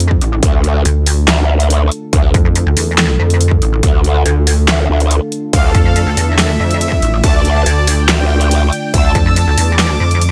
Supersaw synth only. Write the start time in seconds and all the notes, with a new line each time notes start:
5.53 F5
5.64 A4
5.75 A4
5.85 F5
5.96 A4
6.07 A4
6.17 A4
6.28 E5
7.24 A5
7.34 D5
7.45 D5
7.56 A5
7.66 D5
7.77 D5
7.87 D5
7.98 G5
8.94 E6
9.05 A5
9.15 A5
9.26 E6
9.36 A5
9.47 A5
9.58 A5
9.68 D6